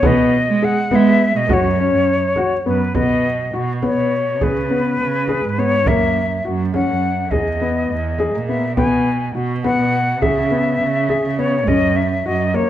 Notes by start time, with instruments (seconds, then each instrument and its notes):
0.03 cello B2, grand piano B3, flute D#5, frame drum
0.48 cello G#3
0.62 grand piano G#4, flute F#5
0.91 cello G#3, grand piano B3, flute E5, frame drum
1.36 cello B2, flute D#5
1.49 cello F#2, grand piano F#4, flute C#5, frame drum
1.79 grand piano C#4
1.94 cello F#2
2.07 frame drum
2.36 grand piano F#4, frame drum
2.66 cello F#2, grand piano B3, flute B4
2.95 cello B2, grand piano B3, flute D#5, frame drum
3.54 cello B2, grand piano F#4, frame drum
3.83 grand piano B3, flute C#5, frame drum
3.97 cello B2
4.41 cello C#3, grand piano G#4, flute B4, frame drum
4.71 grand piano B3
4.99 cello C#3, frame drum
5.28 grand piano G#4, frame drum
5.44 cello G#2
5.58 grand piano B3, flute C#5
5.86 cello F#2, grand piano A#3, flute E5, frame drum
6.45 cello F#2, grand piano F#4, frame drum
6.74 grand piano C#4, flute F#5, frame drum
6.88 cello F#2
7.31 cello E2, grand piano G#4, flute D#5, frame drum
7.61 grand piano B3
7.90 cello E2
8.19 grand piano G#4, frame drum
8.34 cello A#2
8.47 grand piano B3, flute E5
8.76 cello B2, grand piano B3, flute G#5, frame drum
9.35 cello B2, grand piano F#4, frame drum
9.63 grand piano B3, flute F#5, frame drum
9.79 cello B2
10.22 cello C#3, grand piano G#4, flute E5, frame drum
10.51 grand piano B3
10.80 cello C#3, frame drum
11.09 grand piano G#4, frame drum
11.24 cello C#3
11.39 grand piano B3, flute C#5
11.67 cello F#2, grand piano C#4, flute D#5, frame drum
11.96 flute E5
12.25 cello F#2, grand piano F#4, flute D#5, frame drum
12.54 grand piano A#3, flute C#5, frame drum